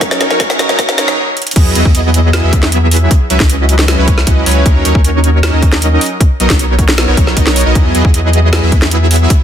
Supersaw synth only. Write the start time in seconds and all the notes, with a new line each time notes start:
0.01 F#3 C#4 D#4 A#4 C#5
0.20 F#3 C#4 D#4 A#4 C#5
0.30 F#3 C#4 D#4 A#4 C#5
0.40 F#3 C#4 D#4 A#4 C#5
0.59 F#3 C#4 D#4 A#4 C#5
0.69 F#3 C#4 D#4 A#4 C#5
0.79 F#3 C#4 D#4 A#4 C#5
0.98 F#3 C#4 D#4 A#4 C#5
1.56 F#3 B3 E4 G#4 D#5
1.75 F#3 B3 E4 G#4 D#5
1.85 F#3 B3 E4 G#4 D#5
2.43 F#3 B3 E4 G#4 E5
2.63 F#3 B3 E4 G#4 E5
3.30 F#3 C#4 E4 B4 E5
3.40 F#3 C#4 E4 B4 D#5
3.98 F#3 C#4 E4 B4 C#5
4.27 F#3 C#4 E4 B4 D#5
4.46 F#3 C#4 E4 B4 C#5
4.66 F#3 C#4 D#4 A#4 C#5
4.85 F#3 C#4 D#4 A#4 C#5
4.95 F#3 C#4 D#4 A#4 C#5
5.53 F#3 C#4 D#4 A#4 D#5
5.72 F#3 C#4 D#4 A#4 D#5
6.40 F#3 B3 D#4 A#4 D#5
6.50 F#3 B3 D#4 A#4 C#5
7.08 F#3 B3 D#4 A#4 C#5
7.17 F#3 B3 D#4 A#4 C#5
7.37 F#3 B3 D#4 A#4 D#5
7.47 F#3 B3 D#4 A#4 C#5
7.66 F#3 B3 D#4 A#4 D#5
7.75 F#3 B3 E4 G#4 D#5
7.95 F#3 B3 E4 G#4 D#5
8.05 F#3 B3 E4 G#4 D#5
8.63 F#3 B3 E4 G#4 E5
8.82 F#3 B3 E4 G#4 E5